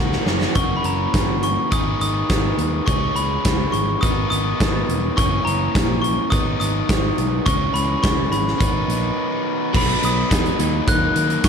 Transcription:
Already playing: picked electric bass C#2, overdriven electric guitar A#3 F#4, glockenspiel A#5
0.12 snare
0.26 picked electric bass F#1, overdriven electric guitar C#4, snare
0.41 snare
0.54 picked electric bass F#1, overdriven electric guitar E3 A#3 C#4, glockenspiel C#6, kick, closed hi-hat
0.58 overdriven electric guitar F#4
0.77 glockenspiel B5
0.84 picked electric bass F#1, glockenspiel A#5, closed hi-hat
1.14 picked electric bass G1, kick, snare, closed hi-hat
1.43 glockenspiel C#6, closed hi-hat
1.71 picked electric bass G#1, overdriven electric guitar D#3 B3 D#4 G#4, glockenspiel D#6, kick, closed hi-hat
2.00 picked electric bass G#1, glockenspiel D#6, closed hi-hat
2.30 picked electric bass G#1, kick, snare, closed hi-hat
2.58 picked electric bass D#2, closed hi-hat
2.86 picked electric bass C#2, overdriven electric guitar E3 G#3 C#4 G#4, glockenspiel C#6, kick, closed hi-hat
3.15 picked electric bass C#2, glockenspiel B5, closed hi-hat
3.45 picked electric bass C#2, kick, snare, closed hi-hat
3.72 picked electric bass G#1, glockenspiel C#6, closed hi-hat
4.01 picked electric bass G#1, overdriven electric guitar D#3 B3 D#4, glockenspiel D#6, kick, closed hi-hat
4.30 picked electric bass G#1, glockenspiel D#6, closed hi-hat
4.60 picked electric bass G#1, kick, snare, closed hi-hat
4.89 picked electric bass E1, closed hi-hat
5.16 picked electric bass F#1, overdriven electric guitar E3 A#3 C#4, glockenspiel C#6, kick, closed hi-hat
5.45 picked electric bass F#1, glockenspiel A#5, closed hi-hat
5.75 picked electric bass A#1, kick, snare, closed hi-hat
6.02 glockenspiel C#6, closed hi-hat
6.30 picked electric bass G#1, overdriven electric guitar D#3 B3 D#4, glockenspiel D#6, kick, closed hi-hat
6.60 picked electric bass G#1, glockenspiel D#6, closed hi-hat
6.89 picked electric bass G#1, kick, snare, closed hi-hat
7.18 picked electric bass B1, closed hi-hat
7.45 picked electric bass C#2, overdriven electric guitar E3 G#3 C#4, glockenspiel C#6, kick, closed hi-hat
7.74 picked electric bass C#2, glockenspiel B5, closed hi-hat
8.03 picked electric bass C#2, glockenspiel C#6, kick, snare, closed hi-hat
8.31 picked electric bass G#1, glockenspiel B5, closed hi-hat
8.47 snare
8.58 picked electric bass G#1, overdriven electric guitar D#3 B3 D#4, kick, closed hi-hat
8.88 picked electric bass A#1, closed hi-hat
9.73 picked electric bass B1, overdriven electric guitar F#3 B3 D#4, glockenspiel B5, kick, crash
10.02 picked electric bass B1, glockenspiel D#6, closed hi-hat
10.29 picked electric bass E2, overdriven electric guitar F#3 B3 D#4, kick, snare, closed hi-hat
10.46 closed hi-hat
10.59 picked electric bass D#2, overdriven electric guitar F#3 A#3 D#4, closed hi-hat
10.87 picked electric bass D#2, overdriven electric guitar F#3 A#3 D#4, glockenspiel F#6, kick, closed hi-hat
11.16 picked electric bass D#3, closed hi-hat
11.30 closed hi-hat
11.44 picked electric bass A#1, overdriven electric guitar F#3 A#3 D#4, glockenspiel C#6, kick, snare, closed hi-hat

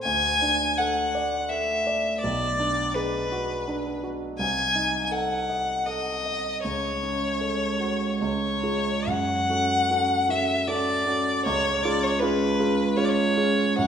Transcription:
0.03 grand piano D2, violin G#5
0.42 grand piano D4
0.77 grand piano A4, violin F#5
1.15 grand piano D5
1.49 grand piano A4, violin E5
1.87 grand piano D5
2.21 grand piano B1, violin D5
2.60 grand piano D4
2.94 grand piano G#4, violin B4
3.32 grand piano F#4
3.68 grand piano D4
4.04 grand piano F#4
4.38 grand piano C2, violin G#5
4.75 grand piano D#4
5.05 violin G#5
5.11 grand piano A4, violin F#5
5.49 grand piano D#5
5.86 grand piano A4, violin D#5
6.25 grand piano D#5
6.64 grand piano C#2, violin C#5
7.03 grand piano C#4
7.41 grand piano A4
7.80 grand piano F#4
8.22 grand piano C#2, violin C#5
8.63 grand piano F4 G#4
9.07 grand piano F#2, violin F#5
9.49 grand piano C#4 F#4 A4
9.90 grand piano C#4 F#4 A4
10.29 grand piano C#4 F#4 A4, violin E5
10.67 grand piano C#4 F#4 A4, violin D5
11.06 grand piano C#4 F#4 A4
11.45 grand piano C#2, violin C#5
11.83 grand piano C#4 F4 G#4, violin D5
12.03 violin C#5
12.19 grand piano C#4 F4 G#4, violin B4
12.59 grand piano C#4 F4 G#4
12.96 grand piano C#4 F4 G#4, violin C#5
13.05 violin C#5 D5
13.37 grand piano C#4 F4 G#4
13.78 grand piano F#2, violin F#5

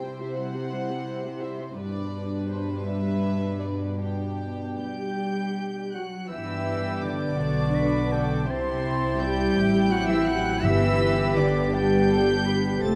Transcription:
Already playing: cello section C3, french horn section C4 E4, violin section C5 G5
0.03 viola section G3 E4
0.20 viola section C4 G4, violin section E5
0.37 viola section G3 E4, violin section F#5
0.55 viola section C4 G4
0.72 viola section G3 E4
0.89 viola section C4 G4
1.07 viola section G3 E4
1.25 viola section C4 G4
1.42 viola section G3 E4, violin section E5
1.60 viola section C4 G4, violin section C5
1.77 cello section G2, french horn section B2 D4, viola section G3 D4, violin section B4 D5
2.49 violin section C5
2.84 violin section E5
3.60 violin section D5
4.00 viola section B3 D4, violin section G4 G5
4.79 cello section G3, viola section G4, flute G5, violin section G6
5.92 cello section F#3, viola section F#4, flute F#5, violin section F#6
6.29 double bass section G2, cello section E3, french horn section B3 D4, viola section E4, violin section G4 B4 E6, flute E5, oboe G5
7.02 cello section D3, viola section D4, flute D5, violin section D6
7.38 double bass section B1, violin section F#4 D5, oboe A5
7.75 violin section B4, oboe B5
8.12 violin section A4, oboe G5
8.46 double bass section C2, cello section C3, viola section C4, french horn section C4 E4, violin section E4 G4 C6, flute C5, oboe A5
9.20 cello section G3, viola section G4, flute G5, violin section G6
9.57 double bass section A1, violin section E4, oboe G5
9.90 cello section F#3, viola section F#4, flute F#5, violin section F#6
10.08 cello section E3, viola section E4, flute E5, violin section E6
10.25 cello section F#3, viola section E4, flute F#5, violin section F#6
10.61 double bass section G1, timpani G2, cello section E3, french horn section B3 G4, viola section E4, violin section G4 B4 E6, flute E5, oboe B5
11.36 cello section D3, viola section D4, flute D5, violin section D6
11.73 cello section G3, violin section D4 B4 G6, viola section G4, flute G5, oboe A5
12.09 violin section A4, oboe G5
12.45 violin section B4, oboe B5
12.82 double bass section F1, cello section A3, french horn section C4, violin section F4 C5 A6, viola section A4, oboe A5, flute A5

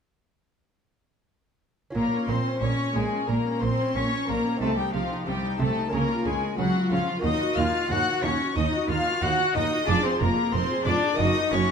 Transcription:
1.90 lute C#4 F4, violin section A#4
1.95 double bass section A#1, lute A#2, cello section A#2, viola section A#3, cello A#3, violin section A#5
2.12 viola section C#4
2.28 double bass section A#1, cello section A#2, lute A#2, viola section A#3, cello C4, violin section C5 C6
2.45 viola section C#4
2.61 double bass section A#1, cello section A#2, lute A#2, viola section A#3, cello C#4, violin section C#5 C#6
2.78 viola section C#4
2.95 double bass section A#1, cello section A#2, lute A#2, cello G#3, viola section A#3, violin section G#4 G#5
3.12 viola section C#4
3.28 double bass section A#1, cello section A#2, lute A#2, viola section A#3, cello A#3, violin section A#4 A#5
3.45 viola section C#4
3.61 double bass section A#1, cello section A#2, lute A#2, viola section A#3, cello C4, violin section C5 C6
3.78 viola section C#4
3.94 double bass section A#1, cello section A#2, lute A#2, viola section A#3, cello C#4, violin section C#5 C#6
4.12 viola section C#4
4.28 double bass section A#1, cello section A#2, lute A#2, viola section A#3, cello A#3, violin section A#4 A#5
4.45 viola section C#4
4.57 lute C4 D#4, violin section A4
4.61 double bass section C2, lute C3, cello section C3, cello A3, viola section C4, violin section A5
4.77 cello G3, viola section D#4, violin section G4 G5
4.93 double bass section C2, lute C3, cello section C3, cello F3, viola section C4, violin section F4 F5
5.10 viola section D#4
5.26 double bass section C2, cello section C3, lute C3, cello G3, viola section C4, violin section G4 G5
5.43 viola section D#4
5.59 double bass section C2, cello section C3, lute C3, cello A3, viola section C4, violin section A4 A5
5.76 viola section D#4
5.88 lute A#3 C#4 F4, violin section A#4
5.92 double bass section C#2, lute C#3, cello section C#3, cello A#3, viola section C#4, violin section A#5
6.09 viola section F4
6.25 double bass section C#2, lute C#3, cello section C#3, cello G#3, viola section C#4, violin section G#4 G#5
6.42 viola section F4
6.58 double bass section C#2, cello section C#3, lute C#3, cello F#3, viola section C#4, violin section F#4 F#5
6.75 viola section F4
6.91 double bass section C#2, cello section C#3, lute C#3, cello F3, viola section C#4, violin section F4 F5
7.08 viola section F4
7.19 lute A#3 F#4
7.23 lute D#2, double bass section D#2, cello section D#2, viola section D#4, cello D#4, violin section D#5 D#6
7.40 viola section F#4
7.57 double bass section D#2, lute D#2, cello section D#2, viola section D#4, cello F4, violin section F5 F6
7.74 viola section F#4
7.89 lute D#2, double bass section D#2, cello section D#2, viola section D#4, cello F#4, violin section F#5 F#6
8.07 viola section F#4
8.23 lute D#2, double bass section D#2, cello section D#2, cello C#4, viola section D#4, violin section C#5 C#6
8.40 viola section F#4
8.55 lute D#2, cello section D#2, double bass section D#2, viola section D#4, cello D#4, violin section D#5 D#6
8.72 viola section F#4
8.88 lute D#2, cello section D#2, double bass section D#2, viola section D#4, cello F4, violin section F5 F6
9.05 viola section F#4
9.22 lute D#2, double bass section D#2, cello section D#2, viola section D#4, cello F#4, violin section F#5 F#6
9.38 viola section F#4
9.55 double bass section D#2, lute D#2, cello section D#2, cello D#4, viola section D#4, violin section D#5 D#6
9.71 viola section F#4
9.83 lute G#3 F4 G#4
9.87 double bass section F1, lute F2, cello section F2, cello D4, viola section F4, violin section D5 D6
10.04 cello C4, viola section G#4, violin section C5 C6
10.20 double bass section F1, lute F2, cello section F2, cello A#3, viola section F4, violin section A#4 A#5
10.37 viola section G#4
10.52 double bass section F1, lute F2, cello section F2, cello C4, viola section F4, violin section C5 C6
10.70 viola section G#4
10.85 double bass section F1, lute F2, cello section F2, cello D4, viola section F4, violin section D5 D6
11.03 viola section G#4
11.14 lute A#3 D#4 F#4
11.18 double bass section F#1, lute F#2, cello section F#2, cello D#4, viola section F#4, violin section D#5 D#6
11.36 viola section D#4
11.51 double bass section F#1, lute F#2, cello section F#2, cello C#4, viola section F#4, violin section C#5 C#6

